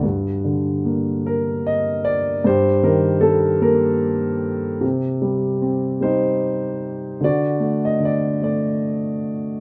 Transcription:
<<
  \new Staff \with { instrumentName = "Grand piano" } { \time 6/8 \key g \minor \tempo 4. = 50 << { r4. bes'8 ees''8 d''8 | c''8 bes'8 a'8 bes'4 r8 | r4. c''4. | d''8. ees''16 d''8 d''4 r8 | } \\ { r2. | g'4. r4. | r4. ees'4. | fis'4. r4. | } >> }
  \new Staff \with { instrumentName = "Grand piano" } { \clef bass \time 6/8 \key g \minor g,8 d8 bes2 | g,8 ees8 g8 bes4. | c8 g8 c'8 g4. | d8 a8 d8 a4. | }
>>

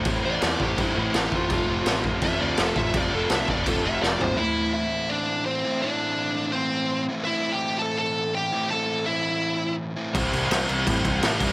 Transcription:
<<
  \new Staff \with { instrumentName = "Lead electric guitar" } { \time 4/4 \key a \minor \tempo 4 = 167 r8 d''4 g'8 e'8 e'8 g'8 f'8~ | f'4. r8 e''8 d''8 a'8 e''8 | d''8 a'8 e''8 d''8 a'8 e''8 d''8 c''8 | <e' e''>4 <e' e''>4 <d' d''>4 <c' c''>4 |
<d' d''>2 <c' c''>4. r8 | <e' e''>8. <g' g''>8. <a' a''>8 <a' a''>4 <g' g''>4 | <a' a''>4 <e' e''>2 r4 | r1 | }
  \new Staff \with { instrumentName = "Overdriven electric guitar" } { \time 4/4 \key a \minor <a, e a c' e' c''>8 <a, e a c' e' c''>8 <a, e a c' e' c''>8 <a, e a c' e' c''>8 <a, e a c' e' c''>8 <a, e a c' e' c''>8 <a, e a c' e' c''>8 <a, e a c' e' c''>8 | <f a c' f' a'>8 <f a c' f' a'>8 <f a c' f' a'>8 <f a c' f' a'>8 <f a c' f' a'>8 <f a c' f' a'>8 <f a c' f' a'>8 <f a c' f' a'>8 | <f a c' f' a'>8 <f a c' f' a'>8 <f a c' f' a'>8 <f a c' f' a'>8 <f a c' f' a'>8 <f a c' f' a'>8 <f a c' f' a'>8 <f a c' f' a'>8 | <a, e a c' e'>2.~ <a, e a c' e'>8 <a, e a c' e'>8 |
<a, e a c' e'>2.~ <a, e a c' e'>8 <a, e a c' e'>8 | <a, e a c' e'>2.~ <a, e a c' e'>8 <a, e a c' e'>8 | <a, e a c' e'>2.~ <a, e a c' e'>8 <a, e a c' e'>8 | <c e g c' e'>2.~ <c e g c' e'>8 <c e g c' e'>8 | }
  \new Staff \with { instrumentName = "Overdriven electric guitar" } { \clef bass \time 4/4 \key a \minor <a, e a>8 <a, e a>8 <a, e a>8 <a, e a>8 <a, e a>8 <a, e a>8 <a, e a>8 <a, e a>8 | <f, c f>8 <f, c f>8 <f, c f>8 <f, c f>8 <f, c f>8 <f, c f>8 <f, c f>8 <f, c f>8 | <f, c f>8 <f, c f>8 <f, c f>8 <f, c f>8 <f, c f>8 <f, c f>8 <f, c f>8 <f, c f>8 | r1 |
r1 | r1 | r1 | <c g c'>4. <c g c'>4. <c g c'>4 | }
  \new Staff \with { instrumentName = "Picked electric bass" } { \clef bass \time 4/4 \key a \minor a,,8 a,,8 e,8 a,,8 g,8 a,,8 a,,8 a,,8 | f,,8 f,,8 a,,4 a,,8 d,8 f,,8 a,,8 | f,,8 f,,8 c,8 f,,8 d,8 f,,8 f,,8 gis,,8 | r1 |
r1 | r1 | r1 | c,8 c,8 c,8 c,8 a,8 c,8 a,8 c,8 | }
  \new DrumStaff \with { instrumentName = "Drums" } \drummode { \time 4/4 <cymc bd>4 <cymc sn>8 bd8 <cymc bd>4 <cymc sn>8 bd8 | <cymc bd>4 <cymc sn>8 bd8 <cymc bd>4 <cymc sn>8 bd8 | <cymc bd>4 <cymc sn>8 bd8 <cymc bd>4 sn8 tomfh8 | r4 r4 r4 r4 |
r4 r4 r4 r4 | r4 r4 r4 r4 | r4 r4 r4 r4 | <cymc bd>8 cymc8 <cymc sn>8 cymc8 <cymc bd>8 <cymc bd>8 <cymc sn>8 <cymc bd>8 | }
>>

